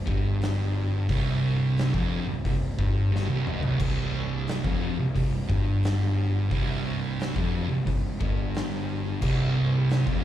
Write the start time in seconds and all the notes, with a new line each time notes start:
0.05 G1 G2, kick
0.41 snare, open hi-hat
1.09 C1 C2, kick, open hi-hat
1.77 snare, open hi-hat
1.94 F1 F2, kick
2.28 C1 C2
2.45 C1 C2, kick, open hi-hat
2.79 G1 G2, kick
3.12 G1 G2, snare
3.29 C1 C2
3.46 F#1 F#2, mid tom
3.62 C1 C2, floor tom
3.79 C1 C2, kick, crash
4.47 snare, open hi-hat
4.64 F1 F2, kick
4.97 C1 C2
5.15 C1 C2, kick, open hi-hat
5.48 G1 G2, kick
5.83 snare, open hi-hat
6.51 C1 C2, kick, open hi-hat
7.20 snare, open hi-hat
7.36 F1 F2, kick
7.68 C1 C2
7.86 C1 C2, kick, open hi-hat
8.20 G1 G2, kick
8.55 snare, open hi-hat
9.21 C1 C2, kick, crash
9.89 snare, open hi-hat
10.06 F1 F2, kick